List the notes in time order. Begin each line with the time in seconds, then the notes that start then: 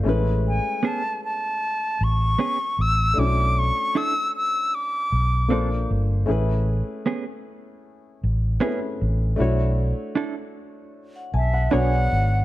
0.03 A1 A3 C#4 E4
0.08 G#3 B4
0.48 G#5
0.83 B3 C#4 G#4
0.87 A5
1.24 A5
2.01 A1 C#6
2.39 B3 C#4 G#4
2.79 A1 E6
3.14 A3 D4 E4
3.18 B1 C#4 F#4 D6
3.59 C#6
3.95 D4 E4 A4 E6
4.36 E6
4.75 D6
5.12 B1
5.48 A#1 A#3 C4 D4 F4 A4 C5
5.91 G1
6.26 A1 A3 C#4 E4 G#4
6.31 B4
7.06 B3 C#4 G#4
8.24 A1
8.60 A3 B3 C4 C#4 E4 G#4 B4
8.67 C#4
9.02 A1
9.36 A3 D4 E4 F#4
9.40 B1 C#5
10.15 D4 E4 A4
11.16 F#5
11.34 B1 E5 G#5 A5
11.54 F#5
11.71 B1 B3 D4 F#4 G#4 C#5 D5 G#5
11.75 F#5
11.94 F#5
12.12 G#1